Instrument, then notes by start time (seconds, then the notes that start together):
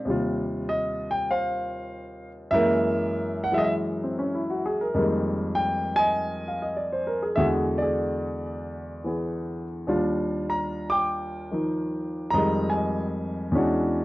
grand piano
0.05 D#2 C3 G3
0.10 F4
0.69 D#5
1.11 G5
1.31 C5 F5
2.51 F#2 E3 G#3 A#4 E5
2.56 A#3
3.44 F#5
3.52 E3 F#3 G#3 E5
3.58 D#5
3.64 E5
4.04 C4
4.19 C#4
4.35 E4
4.50 F#4
4.66 G#4
4.81 A#4
4.94 F2 D#3 G3 G#3 A#3
5.55 G5
5.96 D#5 G#5
6.48 F5
6.62 D#5
6.76 D5
6.92 C5
7.07 A#4
7.22 G#4
7.35 E2 D3 G#3 F#4 E5
7.40 G#4
7.78 D5
7.82 G#4
9.04 E3 B3 G#4
9.87 D#2 G3 D4 F4
10.50 A#5
10.90 G5 D6
11.51 D#3 F3 D#4
12.31 F2 D#3 D#5 A#5
12.35 G3 G#3
12.70 G#5
12.74 D#5
13.51 E2 E3 G#3 C#4 D4
13.57 F#4